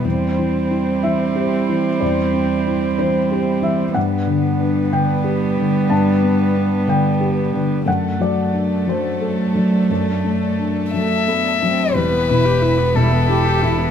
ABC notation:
X:1
M:6/8
L:1/16
Q:3/8=61
K:Em
V:1 name="Violin"
z12 | z12 | z12 | z12 |
z12 | z6 e6 | B6 A6 |]
V:2 name="String section"
[G,Ec]12- | [G,Ec]12 | [G,DB]12- | [G,DB]12 |
[A,DA]12- | [A,DA]12 | [EGB]12 |]
V:3 name="Felt piano"
z6 e6 | d6 c4 e2 | f6 g6 | a6 g4 z2 |
f2 d4 c6 | d6 z6 | z12 |]
V:4 name="Felt piano" clef=bass
E,,2 E,2 E2 E,2 G2 E,2 | E,,2 C2 E2 E,2 G2 E,2 | G,,2 D,2 D2 D,2 G2 D,2 | G,,2 B,2 D2 D,2 G2 D,2 |
F,,2 F,2 D2 F,2 A2 F,2 | F,,2 A,2 D2 F,2 A2 F,2 | E,,2 B,,2 E2 B,,2 G2 B,,2 |]
V:5 name="Cello"
G,12- | G,12 | G,12- | G,12 |
F,12- | F,6 A,2 B,2 C2 | z6 E2 G2 E2 |]
V:6 name="Viola"
C12- | C12 | B,12- | B,12 |
A,12- | A,8- A,2 z2 | G, B, E G E B, G, B, E G E B, |]
V:7 name="Double bass" clef=bass
z12 | z12 | z12 | z12 |
z12 | z12 | E,,,12 |]